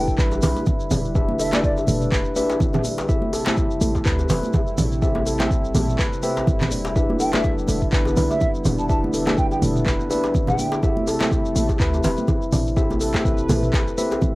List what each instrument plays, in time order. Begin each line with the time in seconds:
Already playing: 808-style bass E1, analog synth pad D3 G3 E4 B4, tine electric piano D4 E4 G4 B4 E5, bansuri G5
0.08 kick, shekere
0.18 808-style bass A1, handpan B4, kick, clap, shekere
0.31 djembe tone, shekere
0.42 808-style bass B1, handpan B4, open hi-hat, djembe slap, low conga, shekere
0.56 djembe tone, high conga, shekere
0.66 handpan E4, kick, low conga, shekere
0.80 shekere
0.91 808-style bass E1, handpan D4, mid tom, open hi-hat, djembe tone, low conga, shekere
1.05 shekere
1.15 tine electric piano D4 E4 G4 B4 E5, handpan E4, kick, djembe tone, djembe bass, shekere
1.29 high conga
1.39 handpan A4, bansuri E5, open hi-hat, shekere
1.52 tine electric piano D4 E4 G4 B4 E5, bansuri D5, clap, djembe slap, djembe tone, high conga, shekere
1.63 handpan E4, bansuri D5, kick, shekere
1.77 djembe tone, shekere
1.87 808-style bass E1, handpan A4, mid tom, open hi-hat, high conga, low conga, shekere
2.01 mid tom, shekere
2.12 808-style bass E1, handpan B4, kick, clap, djembe tone, high conga, shekere
2.25 shekere
2.36 tine electric piano D4 E4 G4 B4 E5, handpan B4, open hi-hat, high conga, djembe tone, shekere
2.50 djembe slap, shekere
2.60 handpan E4, kick, low conga, shekere
2.74 mid tom, djembe tone, low conga, djembe bass, shekere
2.84 handpan D4, open hi-hat, high conga, shekere
2.98 djembe slap, djembe tone, shekere
3.09 analog synth pad C3 G3 A3 E4, tine electric piano C4 E4 G4 A4 E5, handpan E4, kick, djembe bass, shekere
3.22 high conga
3.33 handpan A4, open hi-hat, djembe tone, shekere
3.46 tine electric piano C4 E4 G4 A4 E5, clap, djembe slap, high conga, shekere
3.57 handpan E4, kick, djembe tone, shekere
3.71 shekere
3.81 808-style bass A1, handpan A4, open hi-hat, high conga, shekere
3.95 kick, djembe tone, shekere
4.05 808-style bass D2, handpan B4, kick, clap, shekere
4.19 djembe tone, shekere
4.29 808-style bass E1, handpan B4, open hi-hat, djembe slap, low conga, shekere
4.43 high conga, shekere
4.53 handpan E4, kick, djembe tone, low conga, shekere
4.67 shekere
4.78 808-style bass A1, handpan D4, mid tom, open hi-hat, djembe tone, low conga, shekere
4.92 shekere
5.02 tine electric piano C4 E4 G4 A4 E5, handpan E4, kick, djembe bass, shekere
5.15 djembe tone, high conga
5.26 handpan A4, open hi-hat, shekere
5.40 tine electric piano C4 E4 G4 A4 E5, clap, djembe slap, djembe tone, high conga, shekere
5.51 handpan E4, kick, shekere
5.64 shekere
5.75 808-style bass A1, handpan A4, mid tom, open hi-hat, high conga, djembe tone, low conga, shekere
5.88 mid tom, shekere
5.99 handpan B4, kick, clap, high conga, djembe tone, shekere
6.13 shekere
6.23 tine electric piano C4 E4 G4 A4 E5, handpan B4, open hi-hat, high conga, shekere
6.37 djembe slap, djembe tone, shekere
6.47 808-style bass G1, handpan E4, kick, low conga, shekere
6.61 clap, mid tom, djembe tone, djembe bass, low conga, shekere
6.71 808-style bass E1, handpan D4, open hi-hat, high conga, shekere
6.85 djembe slap, shekere
6.96 analog synth pad D3 B3, tine electric piano D4 E4 G4 B4 E5, handpan E4, kick, djembe bass, shekere
7.10 high conga, djembe tone
7.20 handpan A4, bansuri G5, open hi-hat, shekere
7.33 tine electric piano D4 E4 G4 B4 E5, bansuri E5, clap, djembe slap, high conga, shekere
7.44 handpan E4, kick, djembe tone, shekere
7.58 shekere
7.68 808-style bass E1, handpan A4, open hi-hat, high conga, djembe tone, shekere
7.81 kick, shekere
7.92 808-style bass A1, handpan B4, kick, clap, shekere
8.05 djembe tone, shekere
8.16 808-style bass B1, handpan B4, open hi-hat, djembe slap, low conga, shekere
8.30 bansuri E5, djembe tone, high conga, shekere
8.41 handpan E4, kick, low conga, shekere
8.55 shekere
8.65 808-style bass E1, handpan D4, mid tom, open hi-hat, djembe tone, low conga, shekere
8.78 bansuri A5, shekere
8.89 tine electric piano D4 E4 G4 B4 E5, handpan E4, bansuri A5, kick, djembe tone, djembe bass, shekere
9.04 high conga
9.14 handpan A4, open hi-hat, shekere
9.27 tine electric piano D4 E4 G4 B4 E5, clap, djembe slap, high conga, djembe tone, shekere
9.38 handpan E4, bansuri G5, kick, shekere
9.51 bansuri G5, djembe tone, shekere
9.62 808-style bass E1, handpan A4, mid tom, open hi-hat, high conga, low conga, shekere
9.76 mid tom, shekere
9.86 808-style bass E1, handpan B4, kick, clap, high conga, djembe tone, shekere
10.00 shekere
10.10 tine electric piano D4 E4 G4 B4 E5, handpan B4, open hi-hat, djembe tone, high conga, shekere
10.24 djembe slap, shekere
10.34 handpan E4, kick, low conga, shekere
10.47 bansuri G5, mid tom, djembe tone, low conga, djembe bass, shekere
10.59 handpan D4, open hi-hat, high conga, shekere
10.72 djembe slap, djembe tone, shekere
10.83 analog synth pad C3 A3, tine electric piano C4 E4 G4 A4 E5, handpan E4, kick, djembe bass, shekere
10.97 high conga
11.07 handpan A4, open hi-hat, djembe tone, shekere
11.20 tine electric piano C4 E4 G4 A4 E5, clap, djembe slap, high conga, shekere
11.32 handpan E4, kick, djembe tone, shekere
11.45 shekere
11.56 808-style bass A1, handpan A4, open hi-hat, high conga, shekere
11.69 kick, djembe tone, shekere
11.80 808-style bass D2, handpan B4, kick, clap, shekere
11.94 djembe tone, shekere
12.04 808-style bass E1, handpan B4, open hi-hat, djembe slap, low conga, shekere
12.17 high conga, shekere
12.28 handpan E4, kick, djembe tone, low conga, shekere
12.42 shekere
12.52 808-style bass A1, handpan D4, mid tom, open hi-hat, djembe tone, low conga, shekere
12.67 shekere
12.77 tine electric piano C4 E4 G4 A4 E5, handpan E4, analog synth pad B4, kick, djembe bass, shekere
12.90 high conga, djembe tone, shekere
13.01 handpan A4, open hi-hat, shekere
13.14 tine electric piano C4 E4 G4 A4 E5, kick, clap, djembe slap, high conga, djembe tone, shekere
13.25 handpan E4, kick, shekere
13.38 shekere
13.49 808-style bass A1, handpan A4, mid tom, open hi-hat, high conga, djembe tone, low conga, shekere
13.63 mid tom, shekere
13.73 808-style bass A1, handpan B4, kick, clap, djembe slap, high conga, djembe tone, shekere
13.87 shekere
13.97 tine electric piano C4 E4 G4 A4 E5, handpan B4, open hi-hat, high conga, shekere
14.11 djembe slap, djembe tone, shekere
14.22 handpan E4, kick, high tom, low conga, shekere